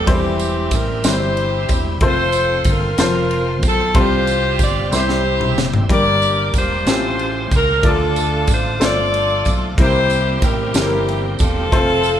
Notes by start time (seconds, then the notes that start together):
Already playing: B3 G4
0.06 E1 E3 G3 C4 D#4 E4 G4 C5, kick, ride
0.11 E4 G4
0.39 ride, tambourine
0.71 A1, kick, ride, tambourine
0.75 A#4
1.04 G1 G3 C4 E4 G4 C5, snare, ride, tambourine
1.08 C5
1.37 ride
1.69 E1, kick, ride, tambourine
2.01 F1 A3 C4 F4 A4 C5, kick, ride
2.05 F4 A4 C5
2.32 ride, tambourine
2.64 G1, kick, ride, tambourine
2.70 F4 A#4
2.98 F1 F3 C4 F4 C5 A5, snare, ride, tambourine
3.31 ride
3.63 B1, kick, ride, tambourine
3.68 A4
3.94 C2 C3 G3 C4 F4 G4 C5, kick, ride
3.98 G4 C5
4.27 ride, tambourine
4.59 G1, kick, ride, tambourine
4.64 D5
4.91 C2 C3 G3 C4 E4 G4 C5, snare, tambourine
4.97 C5
5.09 snare
5.41 mid tom
5.57 F#1, snare, tambourine
5.74 floor tom
5.89 G1 G2 G3 A#3 D4 G4 A#4 D5, kick, ride
6.22 ride, tambourine
6.54 E1 F4 G4, kick, ride, tambourine
6.59 C5
6.86 A1 A2 A3 C4 C#4 F4 G4 A4 C5, snare, ride, tambourine
6.93 C#3
7.19 ride
7.51 C#2, kick, ride, tambourine
7.56 A#4
7.83 D2 D3 A3 D4 E4 F4 A4 D5, kick, ride
7.89 F4 A4
8.16 ride, tambourine
8.47 A1, kick, ride, tambourine
8.54 C5
8.79 G1 A3 D4 F4 A4 C5, snare, ride, tambourine
8.84 D5
9.14 ride
9.45 B1, kick, ride, tambourine
9.77 C2 C3 G3 A#3 C4 E4 G4 A#4, kick, ride
9.82 C5
10.10 ride, tambourine
10.42 A1 E4 G4 A#4, kick, ride, tambourine
10.74 G1 A#3 C4 E4 G4 A4, snare, ride, tambourine
10.82 A#4
11.09 ride
11.39 E1 C4 F4 A4, kick, ride, tambourine
11.72 F1 A3 C4 F4 A4 C5, kick, ride
12.03 ride, tambourine